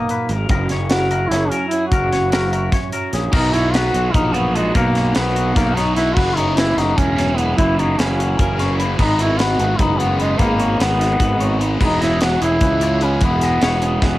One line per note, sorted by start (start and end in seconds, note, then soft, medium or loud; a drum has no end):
0.00 0.95 F#3 medium
0.00 0.32 A#3 medium
0.00 0.47 D#4 medium
0.00 0.91 F#4 medium
0.00 0.95 A#4 medium
0.09 0.29 A#2 medium
0.09 0.31 B4 medium
0.09 closed hi-hat medium
0.29 0.48 G#1 medium
0.29 0.49 G#2 medium
0.29 0.50 A#4 medium
0.29 closed hi-hat medium
0.49 1.27 F#1 medium
0.49 1.90 F#2 medium
0.49 0.71 A#4 medium
0.49 kick loud
0.49 closed hi-hat medium
0.69 1.31 C#4 medium
0.69 0.91 C#5 medium
0.69 snare soft
0.69 closed hi-hat medium
0.90 1.12 E4 medium
0.90 1.30 F#4 loud
0.90 1.10 A#4 medium
0.90 snare loud
0.90 closed hi-hat medium
1.11 1.90 E4 medium
1.11 1.31 A#4 medium
1.11 closed hi-hat medium
1.28 1.50 F#1 loud
1.28 1.50 E4 loud
1.28 1.51 C#5 medium
1.28 closed hi-hat loud
1.33 1.72 C#4 medium
1.33 snare soft
1.49 2.92 F#3 medium
1.49 1.67 C#4 medium
1.49 1.72 A#4 medium
1.49 closed hi-hat medium
1.68 1.86 E4 loud
1.68 closed hi-hat medium
1.72 1.90 C#4 medium
1.72 1.92 G#4 medium
1.87 2.86 F#4 loud
1.92 2.68 F#1 medium
1.92 3.33 F#2 medium
1.92 2.12 A#4 medium
1.92 kick loud
1.92 closed hi-hat loud
2.13 2.72 C#4 medium
2.13 2.32 C#5 medium
2.13 snare soft
2.13 closed hi-hat medium
2.31 2.51 E4 medium
2.31 2.52 A#4 medium
2.31 snare loud
2.31 closed hi-hat loud
2.52 3.31 E4 medium
2.52 2.73 A#4 medium
2.52 closed hi-hat medium
2.72 3.13 C#4 medium
2.72 2.92 C#5 medium
2.72 kick loud
2.72 snare soft
2.72 closed hi-hat loud
2.92 4.34 F#3 medium
2.92 3.13 A#4 medium
2.92 closed hi-hat medium
3.13 3.32 A#1 loud
3.13 3.31 C#4 medium
3.13 3.33 G#4 medium
3.13 snare soft
3.13 closed hi-hat medium
3.32 3.90 B1 medium
3.32 4.32 B2 medium
3.32 4.74 B2 medium
3.32 4.35 F#3 loud
3.32 4.34 B3 medium
3.32 4.33 D#4 loud
3.32 3.54 D#4 loud
3.32 4.32 F#4 loud
3.32 3.55 A#4 medium
3.32 kick loud
3.32 crash loud
3.53 3.74 D#4 medium
3.53 3.74 E4 loud
3.53 3.74 C#5 medium
3.53 snare soft
3.53 closed hi-hat medium
3.73 3.95 D#4 medium
3.73 4.15 F#4 loud
3.73 3.94 B4 medium
3.73 snare loud
3.73 closed hi-hat medium
3.94 4.13 B1 loud
3.94 4.15 D#4 medium
3.94 4.14 F#4 medium
3.94 closed hi-hat medium
4.13 4.71 A#1 medium
4.13 4.35 D#4 loud
4.13 4.25 D#4 medium
4.13 4.34 A#4 medium
4.13 kick loud
4.13 closed hi-hat loud
4.25 4.75 F#4 medium
4.32 5.77 F#3 medium
4.32 4.54 F#3 medium
4.32 4.57 B3 loud
4.32 4.55 B3 medium
4.32 4.53 D#4 medium
4.32 4.56 F#4 medium
4.32 4.55 C#5 medium
4.32 closed hi-hat medium
4.36 4.52 B2 medium
4.53 4.73 B2 medium
4.53 4.75 F#3 medium
4.53 4.74 G#3 medium
4.53 4.76 B3 medium
4.53 4.74 D#4 medium
4.53 4.73 D#4 medium
4.53 4.77 F#4 medium
4.53 4.75 B4 medium
4.53 closed hi-hat medium
4.74 5.13 B1 loud
4.74 5.73 B2 medium
4.74 6.16 B2 medium
4.74 5.75 F#3 loud
4.74 5.12 A#3 loud
4.74 5.76 B3 medium
4.74 5.75 D#4 medium
4.74 5.77 F#4 loud
4.74 4.96 A#4 medium
4.74 kick loud
4.74 closed hi-hat loud
4.95 5.56 F#4 medium
4.95 5.15 C#5 medium
4.95 snare soft
4.95 closed hi-hat medium
5.15 5.54 B1 medium
5.15 5.57 B3 medium
5.15 6.14 A#4 medium
5.15 5.36 B4 medium
5.15 snare loud
5.15 closed hi-hat loud
5.35 5.55 D#4 medium
5.35 5.55 F#4 medium
5.35 closed hi-hat medium
5.55 6.13 B1 medium
5.55 5.76 A#3 loud
5.55 5.67 D#4 medium
5.55 5.76 A#4 medium
5.55 kick loud
5.55 snare soft
5.55 closed hi-hat loud
5.67 6.17 F#4 medium
5.74 5.94 B2 medium
5.74 5.98 F#3 medium
5.74 7.21 F#3 medium
5.74 5.97 B3 medium
5.74 5.95 D#4 loud
5.74 5.95 D#4 medium
5.74 5.95 F#4 medium
5.74 5.97 C#5 medium
5.74 closed hi-hat medium
5.78 snare soft
5.95 6.16 B2 medium
5.95 6.17 F#3 medium
5.95 6.18 B3 medium
5.95 6.15 D#4 medium
5.95 6.14 D#4 medium
5.95 6.17 E4 loud
5.95 6.21 F#4 medium
5.95 6.16 B4 medium
5.95 snare soft
5.95 closed hi-hat medium
6.15 6.73 F#1 medium
6.15 7.16 F#2 medium
6.15 7.58 F#2 medium
6.15 7.16 C#3 medium
6.15 7.16 E3 medium
6.15 7.16 A#3 medium
6.15 6.37 F#4 loud
6.15 6.37 B4 medium
6.15 kick loud
6.15 crash medium
6.19 7.15 E4 loud
6.36 6.58 D#4 loud
6.36 6.98 E4 medium
6.36 6.58 C#5 medium
6.36 closed hi-hat medium
6.57 9.18 B3 medium
6.57 6.78 E4 loud
6.57 6.77 B4 medium
6.57 snare loud
6.57 closed hi-hat medium
6.77 6.96 F#1 loud
6.77 6.99 D#4 loud
6.77 6.98 F#4 medium
6.77 snare soft
6.77 closed hi-hat medium
6.97 7.54 E1 loud
6.97 7.39 C#4 loud
6.97 7.57 E4 medium
6.97 7.19 A#4 medium
6.97 kick loud
6.97 closed hi-hat loud
7.16 7.35 F#2 medium
7.16 7.35 C#3 medium
7.16 7.37 E3 medium
7.16 7.36 A#3 medium
7.16 7.36 E4 medium
7.16 7.39 C#5 medium
7.16 snare soft
7.16 closed hi-hat medium
7.22 9.02 F#3 medium
7.36 7.55 F#2 medium
7.36 7.56 C#3 medium
7.36 7.57 E3 medium
7.36 7.57 A#3 medium
7.36 7.56 B3 medium
7.36 7.57 E4 medium
7.36 7.58 B4 medium
7.36 closed hi-hat medium
7.56 7.96 F#1 medium
7.56 8.55 F#2 medium
7.56 8.78 F#2 medium
7.56 8.56 C#3 medium
7.56 8.57 E3 medium
7.56 8.58 A#3 loud
7.56 7.80 E4 loud
7.56 8.58 E4 loud
7.56 7.80 B4 loud
7.56 kick loud
7.56 closed hi-hat loud
7.78 8.01 D#4 loud
7.78 8.97 E4 medium
7.78 8.00 C#5 medium
7.78 closed hi-hat medium
7.99 8.36 F#1 medium
7.99 8.79 C#4 medium
7.99 9.80 F#4 medium
7.99 8.19 B4 medium
7.99 snare loud
7.99 closed hi-hat loud
8.19 8.40 F#4 medium
8.19 closed hi-hat medium
8.39 8.96 F#1 medium
8.39 8.59 A#4 medium
8.39 kick loud
8.39 closed hi-hat loud
8.56 8.76 F#2 medium
8.56 8.77 C#3 medium
8.56 8.77 E3 medium
8.56 8.77 A#3 medium
8.56 8.77 E4 medium
8.56 8.79 C#5 medium
8.56 closed hi-hat medium
8.60 snare soft
8.78 8.98 F#2 medium
8.78 8.99 C#3 medium
8.78 8.98 E3 medium
8.78 8.98 A#3 medium
8.78 8.97 E4 medium
8.78 8.98 B4 medium
8.78 closed hi-hat medium
8.98 9.56 G#1 medium
8.98 9.98 G#2 medium
8.98 10.37 G#2 medium
8.98 9.99 D#3 loud
8.98 10.00 G#3 medium
8.98 9.99 B3 loud
8.98 9.18 D#4 loud
8.98 9.98 D#4 loud
8.98 9.20 B4 medium
8.98 kick loud
8.98 crash loud
9.19 9.39 B3 medium
9.19 9.41 E4 loud
9.19 9.39 C#5 medium
9.19 closed hi-hat medium
9.39 9.60 B3 medium
9.39 9.80 F#4 loud
9.39 9.59 B4 medium
9.39 snare loud
9.39 closed hi-hat medium
9.59 9.78 G#1 loud
9.59 11.00 B3 medium
9.59 9.79 G#4 medium
9.59 closed hi-hat medium
9.79 10.36 F#1 loud
9.79 10.00 D#4 loud
9.79 10.38 F#4 medium
9.79 9.99 B4 medium
9.79 kick loud
9.79 closed hi-hat loud
9.99 10.17 G#2 medium
9.99 10.18 D#3 medium
9.99 10.20 G#3 medium
9.99 10.65 G#3 medium
9.99 10.19 B3 medium
9.99 10.21 B3 medium
9.99 10.18 D#4 medium
9.99 10.20 C#5 medium
9.99 closed hi-hat medium
10.19 10.37 G#2 medium
10.19 10.38 D#3 medium
10.19 10.40 G#3 medium
10.19 10.39 G#3 medium
10.19 10.40 B3 medium
10.19 10.40 D#4 medium
10.19 10.38 B4 medium
10.19 closed hi-hat medium
10.38 10.77 G#1 medium
10.38 11.37 G#2 medium
10.38 11.79 G#2 medium
10.38 11.38 D#3 medium
10.38 11.40 G#3 medium
10.38 10.82 A#3 loud
10.38 11.41 B3 loud
10.38 11.40 D#4 loud
10.38 10.59 B4 loud
10.38 kick loud
10.38 closed hi-hat medium
10.60 10.79 F#4 medium
10.60 10.80 C#5 medium
10.60 closed hi-hat medium
10.80 11.18 G#1 medium
10.80 11.61 B3 medium
10.80 10.90 F#4 medium
10.80 10.99 B4 medium
10.80 snare loud
10.80 closed hi-hat loud
10.90 11.81 G#4 medium
10.99 11.59 D#4 medium
10.99 11.19 G#4 medium
10.99 snare soft
10.99 closed hi-hat medium
11.19 11.77 G#1 medium
11.19 11.79 F#4 medium
11.19 11.40 B4 medium
11.19 kick loud
11.19 closed hi-hat loud
11.38 11.58 G#2 medium
11.38 11.59 D#3 medium
11.38 11.61 G#3 medium
11.38 12.81 G#3 medium
11.38 11.60 B3 medium
11.38 11.61 C#5 medium
11.38 closed hi-hat medium
11.42 11.58 D#4 medium
11.59 11.81 G#2 medium
11.59 11.78 D#3 medium
11.59 11.80 G#3 medium
11.59 11.81 B3 medium
11.59 11.79 D#4 medium
11.59 11.78 D#4 medium
11.59 11.80 B4 medium
11.59 closed hi-hat medium
11.79 12.38 E1 loud
11.79 12.83 E3 medium
11.79 13.21 E3 medium
11.79 12.82 G#3 medium
11.79 12.81 B3 loud
11.79 12.00 D#4 loud
11.79 12.79 E4 loud
11.79 12.01 B4 medium
11.79 kick loud
11.79 crash loud
12.01 12.21 C#4 medium
12.01 12.20 E4 loud
12.01 12.22 D#5 medium
12.01 snare soft
12.01 closed hi-hat medium
12.21 12.32 B3 medium
12.21 12.40 F#4 medium
12.21 12.42 C#5 medium
12.21 snare loud
12.21 closed hi-hat loud
12.32 12.41 C#4 medium
12.42 12.60 E1 loud
12.42 12.61 C#4 medium
12.42 13.05 E4 loud
12.42 12.62 G#4 medium
12.42 closed hi-hat medium
12.61 13.18 C#2 medium
12.61 13.02 C#4 medium
12.61 12.83 B4 medium
12.61 kick loud
12.61 closed hi-hat loud
12.80 12.99 E3 medium
12.80 14.19 G#3 medium
12.80 13.01 G#3 medium
12.80 13.02 B3 medium
12.80 13.03 E4 medium
12.80 13.02 C#5 medium
12.80 closed hi-hat medium
13.00 13.20 E3 medium
13.00 13.22 G#3 medium
13.00 13.23 B3 medium
13.00 13.20 C#4 medium
13.00 13.24 E4 medium
13.00 13.21 B4 medium
13.00 closed hi-hat medium
13.04 13.23 C#4 medium
13.21 13.60 E1 medium
13.21 14.19 E3 medium
13.21 14.19 G#3 medium
13.21 14.19 B3 medium
13.21 14.19 E4 loud
13.21 13.43 B4 medium
13.21 kick loud
13.21 closed hi-hat medium
13.41 14.02 G#4 medium
13.41 13.63 D#5 medium
13.41 snare soft
13.41 closed hi-hat medium
13.62 14.00 E1 medium
13.62 14.19 B4 medium
13.62 13.83 C#5 medium
13.62 snare loud
13.62 closed hi-hat medium
13.82 14.19 C#4 medium
13.82 14.03 G#4 medium
13.82 closed hi-hat medium
14.02 14.19 E1 medium
14.02 14.19 G#4 medium
14.02 14.19 B4 medium
14.02 kick loud
14.02 snare medium